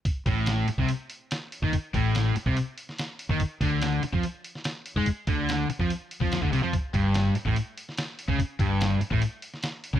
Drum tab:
HH |o-o-o-o-o-o-o-o-|o-o-o-o-o-o-o-o-|o-o-o-o-o-o-o-o-|o-o-o-o-o-o-o-o-|
SD |----o-------o---|----o------oo---|----o------oo---|----o------oo---|
BD |o-o----o-------o|o-o----o-------o|o-o----o-------o|o-o----o---o-o--|

HH |o-o-o-o-o-o-o-o-|o-o-o-o-o-o-o-o-|
SD |----o------oo---|----o------oo---|
BD |o-o----o-------o|o-o----o-------o|